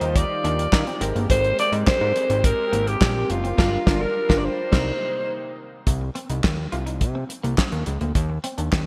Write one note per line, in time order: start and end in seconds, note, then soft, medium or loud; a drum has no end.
0.00 0.25 D#2 medium
0.00 0.99 D#3 medium
0.00 0.97 G3 medium
0.00 0.97 D#4 medium
0.00 0.99 D#4 medium
0.00 0.11 D#4 medium
0.00 0.97 F4 medium
0.00 0.99 F4 medium
0.00 0.99 G4 medium
0.00 0.18 C5 medium
0.00 0.98 F5 medium
0.00 closed hi-hat medium
0.16 1.01 D5 medium
0.16 kick loud
0.16 closed hi-hat loud
0.44 0.68 D#2 medium
0.44 0.53 D4 medium
0.44 closed hi-hat medium
0.59 closed hi-hat medium
0.72 0.84 D#3 loud
0.72 kick loud
0.72 snare loud
0.72 clap medium
0.87 0.96 C4 medium
0.87 closed hi-hat soft
1.01 1.13 G#1 loud
1.01 3.54 G#3 medium
1.01 3.56 G#3 medium
1.01 3.54 C4 medium
1.01 3.56 C4 medium
1.01 3.56 G4 medium
1.01 3.54 G4 medium
1.01 3.55 A#4 medium
1.01 muted clean electric guitar stroke soft
1.01 closed hi-hat medium
1.15 1.27 G1 medium
1.15 1.25 A#3 medium
1.15 closed hi-hat soft
1.30 1.53 G#1 loud
1.30 1.39 G#3 medium
1.30 1.57 C5 loud
1.30 kick loud
1.30 closed hi-hat loud
1.44 closed hi-hat soft
1.59 1.72 D5 loud
1.59 muted clean electric guitar stroke soft
1.59 closed hi-hat medium
1.72 1.84 G#2 loud
1.72 1.82 D#4 medium
1.72 closed hi-hat medium
1.87 1.93 G#2 soft
1.87 2.46 C5 loud
1.87 kick loud
1.87 snare loud
1.87 clap medium
2.01 2.13 G#2 loud
2.01 2.10 D#4 medium
2.16 muted clean electric guitar stroke soft
2.16 closed hi-hat medium
2.30 2.53 G#1 loud
2.30 2.39 C4 medium
2.30 closed hi-hat medium
2.44 2.89 A#4 loud
2.44 kick loud
2.44 closed hi-hat loud
2.73 2.96 G#1 loud
2.73 2.82 A#3 medium
2.73 closed hi-hat medium
2.87 3.32 G4 medium
2.87 closed hi-hat medium
3.01 3.25 A#1 loud
3.01 3.10 G3 medium
3.01 kick loud
3.01 snare loud
3.01 clap medium
3.29 3.53 F#1 medium
3.29 4.03 F4 medium
3.29 muted clean electric guitar stroke soft
3.29 closed hi-hat medium
3.44 3.53 C4 medium
3.44 closed hi-hat soft
3.57 3.78 G1 loud
3.57 3.77 G3 loud
3.57 5.84 G3 medium
3.57 4.71 D4 medium
3.57 3.77 D4 medium
3.57 4.71 F4 medium
3.57 3.78 F4 loud
3.57 4.71 A#4 medium
3.57 3.78 A#4 loud
3.57 kick loud
3.57 snare loud
3.57 crash medium
3.86 4.06 G1 loud
3.86 4.06 G3 loud
3.86 4.06 D4 loud
3.86 4.06 F4 loud
3.86 4.07 A#4 loud
3.86 kick loud
3.86 snare loud
4.01 4.39 A#4 medium
4.29 4.49 G1 loud
4.29 4.48 G3 loud
4.29 4.49 D4 loud
4.29 4.49 F4 loud
4.29 4.49 A#4 loud
4.29 kick loud
4.29 snare loud
4.38 4.46 D5 medium
4.45 5.59 C5 medium
4.71 4.92 C2 loud
4.71 5.86 C3 medium
4.71 4.91 G3 loud
4.71 5.85 A#3 medium
4.71 4.92 C4 loud
4.71 5.85 D#4 loud
4.71 4.92 D#4 loud
4.71 4.92 A#4 loud
4.71 kick loud
4.71 snare loud
4.71 crash medium
5.87 6.10 C2 medium
5.87 kick loud
5.87 closed hi-hat medium
6.01 muted clean electric guitar stroke soft
6.15 6.24 C4 medium
6.15 closed hi-hat medium
6.30 6.41 C2 medium
6.30 6.39 D#4 medium
6.30 closed hi-hat medium
6.44 6.68 D#2 medium
6.44 muted clean electric guitar stroke soft
6.44 kick loud
6.44 snare loud
6.44 clap medium
6.72 7.03 C2 medium
6.72 6.82 F4 medium
6.72 closed hi-hat medium
6.86 6.96 D#4 medium
6.86 closed hi-hat soft
7.01 7.25 C3 medium
7.01 kick loud
7.01 closed hi-hat medium
7.15 7.24 C4 medium
7.29 muted clean electric guitar stroke soft
7.29 closed hi-hat medium
7.43 7.56 C2 medium
7.43 7.53 A#3 medium
7.43 closed hi-hat soft
7.58 7.67 C4 medium
7.58 kick medium
7.58 snare loud
7.58 clap medium
7.72 7.84 D#2 medium
7.72 closed hi-hat soft
7.86 7.99 C#2 medium
7.86 muted clean electric guitar stroke soft
7.86 closed hi-hat medium
8.01 8.13 D2 medium
8.01 8.10 A#3 medium
8.01 closed hi-hat soft
8.15 8.39 D#2 loud
8.15 kick loud
8.15 closed hi-hat medium
8.30 muted clean electric guitar stroke soft
8.44 8.53 C4 medium
8.44 closed hi-hat medium
8.58 8.70 D#2 medium
8.58 8.67 D4 medium
8.58 closed hi-hat medium
8.72 8.86 D#2 medium
8.72 muted clean electric guitar stroke soft
8.72 kick loud
8.72 snare loud
8.72 clap medium